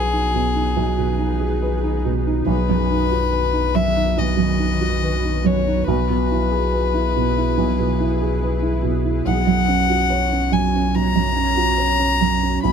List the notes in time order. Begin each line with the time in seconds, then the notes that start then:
Already playing: B1 B2 D#4 G#4 B4
0.13 D#4
0.34 B2
0.55 D#4
0.77 B1
0.98 B2
1.18 D#4
1.40 G#4
1.62 B4
1.83 D#4
2.05 B2
2.26 D#4
2.47 B1 D#3 F#4 B4
2.70 F#2
2.91 D#4
3.11 F#4
3.32 B4
3.53 D#4
3.75 F#2 E5
3.96 D#4
4.17 B1 D#5
4.37 F#2
4.58 D#4
4.81 F#4
5.02 B4
5.24 D#4
5.45 F#2 C#5
5.67 D#4
5.87 B1 E4 G#4 B4
6.10 B2
6.31 E4
6.52 G#4
6.73 B4
6.94 E4
7.16 B2
7.37 E4
7.58 B1
7.79 B2
8.00 E4
8.22 G#4
8.43 B4
8.62 E4
8.83 B2
9.05 E4
9.25 B1 C#4 F#4 C#5 F#5
9.47 F#2
9.68 C#4
9.90 F#4
10.10 C#5
10.32 C#4
10.52 F#2 G#5
10.75 C#4
10.95 B1 A#5
11.16 F#2
11.36 C#4
11.57 F#4
11.78 C#5
11.99 C#4
12.21 F#2
12.43 C#4
12.64 B1 B5